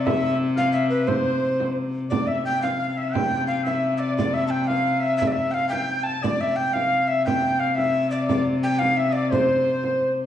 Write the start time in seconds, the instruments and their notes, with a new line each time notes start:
Already playing: viola da gamba C3
0.06 recorder E5, shawm E5, frame drum
0.22 shawm E5
0.56 shawm F5, recorder F5, frame drum
0.72 recorder E5, shawm E5
0.90 recorder B4
1.07 recorder C5, shawm C5, frame drum
1.26 frame drum
1.60 frame drum
2.10 viola da gamba C3, shawm D5, recorder D5, frame drum
2.27 recorder E5, shawm E5, frame drum
2.45 recorder G5, shawm G5
2.62 recorder F5, shawm F5, frame drum
2.79 shawm F5
2.96 shawm E5, recorder E5
3.13 shawm G5, recorder G5, frame drum
3.33 frame drum
3.47 recorder F5
3.64 shawm E5, recorder E5, frame drum
3.97 shawm D5, recorder D5 E5
4.16 shawm D5, recorder D5, frame drum
4.34 recorder E5, shawm E5, frame drum
4.47 recorder G5 A5, shawm G5
4.67 recorder F5, shawm F5, frame drum
5.00 recorder E5, shawm E5
5.17 recorder E5, shawm E5
5.22 frame drum
5.27 recorder D5
5.32 recorder E5, shawm E5
5.38 frame drum
5.51 recorder F5 G5, shawm F5
5.69 recorder G5, shawm G5, frame drum
5.89 shawm G5
6.03 recorder A5, shawm A5
6.08 frame drum
6.23 viola da gamba C3, recorder D5, shawm D5, frame drum
6.41 recorder E5, frame drum
6.56 recorder G5, shawm G5
6.73 recorder F5, shawm F5, frame drum
7.07 recorder E5, shawm E5
7.26 recorder G5, shawm G5, frame drum
7.43 frame drum
7.59 recorder F5, shawm F5
7.75 recorder E5, frame drum
7.79 shawm E5
8.11 recorder D5, shawm D5
8.26 shawm D5, recorder D5, frame drum
8.47 frame drum
8.63 recorder G5
8.79 recorder F5, shawm F5, frame drum
8.97 recorder E5, shawm E5
9.13 recorder D5, shawm D5
9.31 shawm C5, recorder C5, frame drum
9.84 frame drum
10.00 frame drum